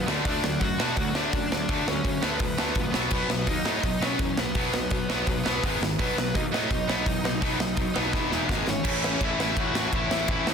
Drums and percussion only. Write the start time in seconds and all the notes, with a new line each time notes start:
0.08 snare
0.25 kick, open hi-hat
0.44 snare
0.61 kick, open hi-hat
0.80 snare
0.97 kick, open hi-hat
1.15 snare
1.33 kick, open hi-hat
1.52 snare
1.69 kick, open hi-hat
1.88 snare
2.05 kick, open hi-hat
2.23 snare
2.39 kick, open hi-hat
2.58 snare
2.75 kick, open hi-hat
2.94 snare
3.11 kick, crash
3.30 snare
3.47 kick, open hi-hat
3.66 snare
3.83 kick, open hi-hat
4.03 snare
4.19 kick, open hi-hat
4.37 snare
4.55 kick, open hi-hat
4.74 snare
4.91 kick, open hi-hat
5.10 snare
5.27 kick, open hi-hat
5.46 snare
5.63 kick, open hi-hat
5.83 snare
5.99 kick, open hi-hat
6.18 snare
6.35 kick, open hi-hat
6.54 snare
6.71 kick, open hi-hat
6.90 snare
7.06 kick, open hi-hat
7.25 snare
7.42 kick, open hi-hat
7.60 snare
7.77 kick, open hi-hat
7.96 snare
8.13 kick, snare
8.32 snare
8.49 kick, snare
8.68 snare
8.85 kick, crash
9.04 snare
9.21 kick, ride
9.40 snare
9.57 kick, ride
9.75 snare
9.93 kick, ride
10.11 snare
10.28 kick, ride
10.47 snare